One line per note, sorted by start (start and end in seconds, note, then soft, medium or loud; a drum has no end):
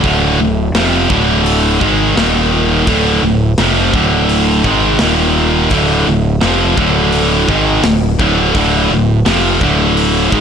0.03 0.37 D1 medium
0.03 0.38 D2 loud
0.03 0.38 A2 medium
0.03 0.39 D3 loud
0.03 kick loud
0.03 open hi-hat soft
0.38 0.72 D1 medium
0.38 0.68 D2 medium
0.38 0.68 A2 medium
0.73 1.07 F1 medium
0.73 1.10 F2 medium
0.73 1.10 C3 loud
0.73 1.10 F3 loud
0.73 snare loud
0.73 open hi-hat medium
1.10 1.77 D1 medium
1.10 1.80 D2 medium
1.10 1.80 A2 loud
1.10 1.81 D3 loud
1.10 kick loud
1.46 open hi-hat medium
1.81 2.14 G#1 medium
1.81 2.16 G#2 medium
1.81 2.16 D#3 medium
1.81 2.17 G#3 loud
1.81 kick loud
2.16 2.83 D#1 medium
2.16 2.87 D#2 loud
2.16 2.87 A#2 medium
2.16 2.87 D#3 medium
2.16 snare loud
2.16 open hi-hat medium
2.87 3.20 D1 medium
2.87 3.22 D2 medium
2.87 3.22 A2 medium
2.87 3.22 D3 loud
2.87 kick loud
2.87 open hi-hat medium
3.23 3.56 D1 medium
3.23 3.51 D2 medium
3.23 3.52 A2 medium
3.58 3.91 F1 medium
3.58 3.93 F2 medium
3.58 3.93 C3 medium
3.58 3.93 F3 loud
3.58 snare medium
3.58 open hi-hat medium
3.93 4.61 D1 medium
3.93 4.64 D2 medium
3.93 4.64 A2 medium
3.93 4.65 D3 loud
3.93 kick loud
4.29 open hi-hat medium
4.64 4.98 G#1 medium
4.64 5.00 G#2 medium
4.64 5.00 D#3 loud
4.64 5.00 G#3 loud
4.64 kick loud
4.99 5.67 D#1 medium
4.99 5.70 D#2 medium
4.99 5.71 A#2 medium
4.99 5.71 D#3 loud
4.99 snare loud
4.99 open hi-hat medium
5.70 6.04 D1 medium
5.70 6.06 D2 medium
5.70 6.06 A2 loud
5.70 6.06 D3 loud
5.70 kick medium
5.70 open hi-hat medium
6.07 6.40 D1 medium
6.07 6.35 D2 medium
6.07 6.36 A2 medium
6.41 6.76 F1 medium
6.41 6.77 F2 medium
6.41 6.77 C3 medium
6.41 6.77 F3 loud
6.41 snare loud
6.41 open hi-hat soft
6.77 7.45 D1 medium
6.77 7.48 D2 medium
6.77 7.48 A2 medium
6.77 7.48 D3 loud
6.77 kick loud
7.12 open hi-hat medium
7.48 7.82 G#1 medium
7.48 7.84 G#2 medium
7.48 7.84 D#3 loud
7.48 7.84 G#3 loud
7.48 kick loud
7.83 8.17 D1 medium
7.83 8.13 D2 medium
7.83 8.13 A2 medium
7.83 snare loud
7.83 open hi-hat medium
8.19 8.52 D1 medium
8.19 8.54 D2 medium
8.19 8.54 A2 medium
8.19 8.54 D3 medium
8.19 kick loud
8.55 8.88 D1 loud
8.55 8.90 D2 medium
8.55 8.90 A2 loud
8.55 8.90 D3 loud
8.55 kick medium
8.55 open hi-hat medium
8.91 9.24 D1 medium
8.91 9.20 D2 medium
8.91 9.20 A2 medium
9.26 9.59 F1 loud
9.26 9.60 F2 medium
9.26 9.61 C3 medium
9.26 9.61 F3 loud
9.26 snare loud
9.26 open hi-hat medium
9.61 10.28 D1 medium
9.61 10.31 D2 medium
9.61 10.31 A2 medium
9.61 10.31 D3 loud
9.61 kick loud
9.97 open hi-hat medium
10.32 10.41 G#1 loud
10.32 10.41 G#2 loud
10.32 10.41 D#3 loud
10.32 10.41 G#3 loud
10.32 kick loud